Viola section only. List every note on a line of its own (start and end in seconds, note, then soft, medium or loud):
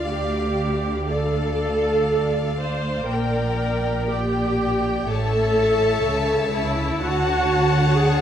0.07 1.11 G4 medium
1.09 2.60 A4 medium
2.59 3.08 C5 medium
3.08 4.09 A#4 medium
4.10 5.09 G4 medium
5.07 6.53 A4 medium
6.53 7.01 E4 medium
7.02 7.99 F#4 medium
7.98 8.21 G#4 medium